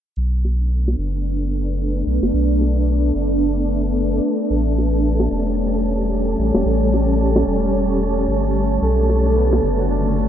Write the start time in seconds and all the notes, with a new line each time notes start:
0.17 B1 A3 B3 D4 A4 A5, shaker
0.45 high bongo
0.88 high bongo
0.98 F#1, shaker
1.53 shaker
2.07 B1, shaker
2.22 F#1, high bongo
2.34 B1
2.61 high bongo, shaker
3.15 F#1, shaker
3.69 shaker
3.96 shaker
4.23 shaker
4.50 A1 G3 C#4, shaker
4.66 shaker
4.77 high bongo, shaker
4.93 shaker
5.04 shaker
5.20 high bongo, shaker
5.31 E1, shaker
5.47 shaker
5.58 shaker
5.85 shaker
6.01 shaker
6.13 shaker
6.39 A1, shaker
6.54 E1, high bongo, shaker
6.66 A1, shaker
6.82 shaker
6.93 high bongo, shaker
7.09 shaker
7.20 shaker
7.36 high bongo, shaker
7.47 E1, shaker
7.63 shaker
7.74 shaker
7.90 shaker
8.02 shaker
8.17 shaker
8.28 G1, shaker
8.44 shaker
8.56 shaker
8.71 shaker
8.82 B1 D3 A3 B3, shaker
8.98 D4, shaker
9.09 A3, high bongo, shaker
9.25 D4, shaker
9.36 B3, shaker
9.52 high bongo, shaker
9.63 F#1, shaker
9.79 F#4, shaker
9.90 D4, shaker
10.06 C#4
10.18 shaker